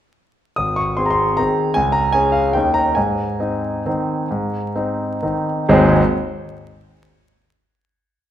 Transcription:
0.56 0.97 G#1 soft
0.56 0.77 D#6 medium
0.76 0.98 C#6 medium
0.97 1.34 C4 soft
0.97 1.35 G#4 soft
0.97 1.05 C6 medium
1.06 1.13 A#5 medium
1.10 1.37 C6 medium
1.37 1.72 D#3 soft
1.37 1.73 C4 soft
1.37 1.73 G#4 soft
1.37 1.75 A#5 medium
1.74 2.14 C#2 medium
1.74 1.94 G#5 medium
1.92 2.13 A#5 medium
2.13 2.51 C#4 soft
2.13 2.51 G#4 soft
2.13 2.34 G#5 medium
2.32 2.54 F5 medium
2.53 2.96 D#2 medium
2.53 2.93 D#3 soft
2.53 2.93 C#4 soft
2.53 2.93 D#4 soft
2.53 2.75 G5 medium
2.74 2.96 A#5 medium
2.95 3.38 G#2 soft
2.95 5.46 G#5 medium
3.40 3.82 C4 soft
3.40 3.83 D#4 soft
3.86 4.27 D#3 soft
3.86 4.27 C4 soft
3.86 4.27 D#4 soft
4.31 4.74 G#2 soft
4.76 5.18 C4 soft
4.76 5.19 D#4 soft
5.23 5.65 D#3 soft
5.23 5.65 C4 soft
5.23 5.65 D#4 soft
5.69 5.92 G#1 medium
5.69 5.92 D#2 medium
5.69 5.92 G#3 medium
5.69 5.92 C4 medium
5.69 5.92 D#4 medium
5.69 5.93 G#4 medium

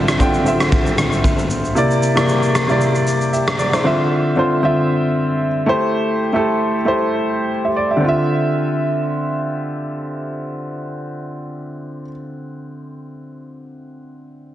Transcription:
0.00 0.18 D3 medium
0.00 0.10 C4 medium
0.00 0.11 F4 medium
0.00 0.11 E5 medium
0.08 cross-stick loud
0.08 shaker medium
0.18 0.41 D3 medium
0.18 0.41 C4 medium
0.18 0.42 F4 medium
0.18 0.42 G5 medium
0.18 kick medium
0.18 shaker medium
0.34 shaker medium
0.45 1.29 D3 medium
0.45 1.30 C4 medium
0.45 1.30 F4 medium
0.45 1.31 E5 medium
0.45 shaker medium
0.60 cross-stick medium
0.60 shaker soft
0.72 kick loud
0.72 shaker medium
0.86 shaker medium
0.98 cross-stick medium
0.98 shaker medium
1.12 shaker soft
1.24 kick medium
1.24 shaker medium
1.39 shaker medium
1.50 shaker medium
1.65 shaker soft
1.75 2.08 C3 medium
1.75 2.08 A#3 medium
1.75 2.09 E4 medium
1.75 2.09 D5 medium
1.75 shaker medium
1.91 shaker soft
2.03 shaker medium
2.15 2.57 C3 medium
2.15 2.57 A#3 medium
2.15 2.58 E4 medium
2.15 2.58 D5 medium
2.15 cross-stick loud
2.15 shaker medium
2.29 shaker medium
2.43 shaker medium
2.55 cross-stick medium
2.55 shaker medium
2.68 3.51 C3 medium
2.68 3.52 A#3 medium
2.68 3.33 E4 medium
2.68 3.34 D5 medium
2.68 shaker soft
2.81 shaker medium
2.95 shaker soft
3.07 shaker medium
3.21 shaker soft
3.33 3.58 G4 medium
3.33 3.58 E5 medium
3.33 shaker medium
3.47 cross-stick loud
3.47 shaker medium
3.59 3.73 D5 medium
3.59 shaker medium
3.73 3.99 E4 medium
3.73 3.98 C5 medium
3.73 cross-stick medium
3.73 shaker soft
3.84 4.27 D3 medium
3.84 4.28 C4 medium
3.84 4.28 F4 medium
3.84 4.29 E5 loud
4.36 4.58 D3 medium
4.36 4.59 C4 medium
4.36 4.59 F4 medium
4.36 4.60 C5 medium
4.62 5.47 D3 medium
4.62 5.47 C4 medium
4.62 5.48 F4 medium
4.62 5.48 E5 medium
5.66 6.19 A3 medium
5.66 6.20 E4 medium
5.66 6.20 G4 medium
5.66 6.21 C5 loud
6.33 6.74 A3 medium
6.33 6.75 E4 medium
6.33 6.75 G4 medium
6.33 6.76 A4 medium
6.85 7.69 A3 medium
6.85 7.69 E4 medium
6.85 7.51 G4 medium
6.85 7.51 C5 medium
7.65 7.76 G4 medium
7.65 7.76 E5 medium
7.76 7.90 D5 medium
7.91 8.16 G4 medium
7.91 8.07 E5 medium
7.97 12.00 D3 medium
8.01 12.04 C4 medium
8.01 12.08 F4 medium
8.09 12.12 E5 medium

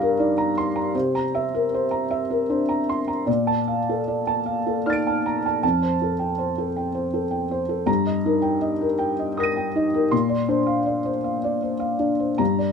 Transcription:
0.00 0.91 G2 medium
0.00 0.97 A#4 medium
0.00 0.19 D5 medium
0.00 0.97 F5 medium
0.00 0.38 A#5 medium
0.19 0.57 D#4 soft
0.19 0.49 D5 soft
0.38 0.68 A#5 soft
0.58 0.76 C6 medium
0.76 0.94 A#5 soft
0.95 3.24 C3 medium
0.95 1.25 C5 medium
1.15 1.44 A#5 soft
1.35 1.64 E5 medium
1.54 1.84 A#4 soft
1.74 2.03 C5 medium
1.91 2.22 A#5 soft
2.11 2.41 E5 medium
2.30 2.61 A#4 soft
2.49 2.88 D4 soft
2.49 2.80 C5 soft
2.69 3.00 A#5 soft
2.89 3.08 C6 soft
3.08 3.27 A#5 soft
3.26 5.59 A#2 medium
3.26 3.59 D5 soft
3.47 3.79 A5 soft
3.68 3.99 F5 soft
3.89 4.20 A4 soft
4.08 4.39 D5 soft
4.27 4.58 A5 soft
4.46 4.77 F5 soft
4.67 4.98 A4 soft
4.86 5.25 D#4 soft
4.86 5.17 D5 soft
4.86 5.60 F6 soft
4.86 5.62 A6 soft
4.93 5.63 D7 soft
5.07 5.37 A5 soft
5.26 5.45 A#5 soft
5.46 5.62 A5 soft
5.63 7.84 F2 soft
5.63 5.93 A5 medium
5.82 6.12 C5 soft
6.02 6.31 A4 soft
6.19 6.49 G5 soft
6.38 6.68 C5 soft
6.58 6.87 A4 soft
6.76 7.06 G5 soft
6.94 7.24 C5 soft
7.14 7.43 A4 soft
7.31 7.61 G5 soft
7.51 7.81 C5 soft
7.69 7.87 A4 soft
7.86 10.07 G2 medium
7.86 8.17 A#5 medium
8.06 8.36 D#5 soft
8.26 8.85 D#4 soft
8.26 8.55 A#4 soft
8.42 8.73 G5 soft
8.61 8.92 D#5 soft
8.81 9.11 A#4 soft
8.99 9.29 G5 soft
9.19 9.48 D#5 soft
9.37 9.67 A#4 soft
9.37 10.08 D#6 soft
9.37 10.09 A#6 soft
9.43 10.11 D#7 soft
9.56 9.86 G5 soft
9.75 10.12 D#4 soft
9.75 10.05 D#5 soft
9.94 10.12 A#4 soft
10.11 12.36 A#2 medium
10.11 10.42 C6 medium
10.29 10.60 D5 soft
10.48 11.09 D4 soft
10.48 10.79 C5 soft
10.67 10.98 F5 soft
10.86 11.17 D5 soft
11.05 11.36 C5 soft
11.24 11.55 F5 soft
11.44 11.74 D5 soft
11.62 11.93 C5 soft
11.80 12.11 F5 soft
11.99 12.39 D4 soft
11.99 12.31 D5 soft
12.20 12.39 C5 soft
12.38 12.72 G2 soft
12.38 12.70 A#5 medium
12.58 12.72 D5 soft

